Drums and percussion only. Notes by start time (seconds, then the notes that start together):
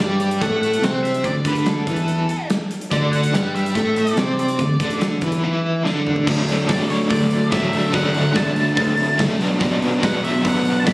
0.00 snare
0.20 closed hi-hat
0.31 closed hi-hat
0.41 kick, closed hi-hat
0.63 closed hi-hat
0.73 closed hi-hat
0.83 snare, closed hi-hat
1.05 snare, closed hi-hat
1.14 closed hi-hat
1.24 kick, closed hi-hat
1.45 kick, closed hi-hat
1.55 closed hi-hat
1.66 snare, closed hi-hat
1.87 kick, closed hi-hat
1.96 closed hi-hat
2.08 closed hi-hat
2.29 closed hi-hat
2.50 snare, closed hi-hat
2.71 closed hi-hat
2.81 closed hi-hat
2.91 kick, closed hi-hat
3.13 closed hi-hat
3.23 closed hi-hat
3.35 snare, closed hi-hat
3.56 closed hi-hat
3.66 closed hi-hat
3.75 kick, closed hi-hat
3.96 closed hi-hat
4.07 closed hi-hat
4.17 snare, closed hi-hat
4.39 closed hi-hat
4.48 closed hi-hat
4.59 kick, closed hi-hat
4.80 kick, closed hi-hat
4.90 closed hi-hat
5.01 snare, closed hi-hat
5.21 kick, closed hi-hat
5.32 closed hi-hat
5.86 snare
6.07 mid tom
6.16 floor tom
6.27 kick, crash
6.49 open hi-hat
6.69 kick, snare, open hi-hat
6.90 open hi-hat
7.10 kick, open hi-hat
7.31 open hi-hat
7.52 kick, snare, open hi-hat
7.73 open hi-hat
7.93 kick, open hi-hat
8.15 open hi-hat
8.35 kick, snare, open hi-hat
8.56 open hi-hat
8.77 kick, open hi-hat
8.97 open hi-hat
9.19 kick, snare, open hi-hat
9.41 snare, open hi-hat
9.60 kick, open hi-hat
9.82 open hi-hat
10.03 kick, snare, open hi-hat
10.25 open hi-hat
10.45 kick, open hi-hat
10.65 open hi-hat
10.87 kick, snare, open hi-hat